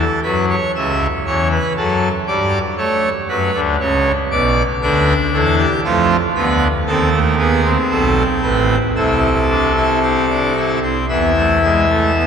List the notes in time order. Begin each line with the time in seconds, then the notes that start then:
0.00 A4
0.23 F#2 F#3 B4
0.50 C#5
0.75 C#2 C#3 E5
1.26 E2 E3 C#5
1.52 B4
1.77 F#2 F#3 A4
2.27 G2 G3 D5
2.78 A3 C#5
3.29 F#2 F#3 B4
3.54 D2 D3
3.80 C#2 C#3 C#5
4.31 B1 B2 D5
4.82 D2 D3 D4 B4
5.33 E2 E3 A4
5.58 G4
5.85 F2 F3 A3 F4
6.35 D2 D3 B3 B4
6.87 D#2 D#3 C4 A4
7.12 A3
7.39 B3 G#4
7.65 C4
7.90 B1 B2 A4
8.43 A1 A2 B4
8.96 C2 C3 E4 A4
9.50 D4
9.76 E4
10.03 C4
10.30 D4
10.56 E4
10.83 C4
11.09 E2 E3 B3 E5
11.36 A3
11.63 G#3
11.90 A3
12.16 B3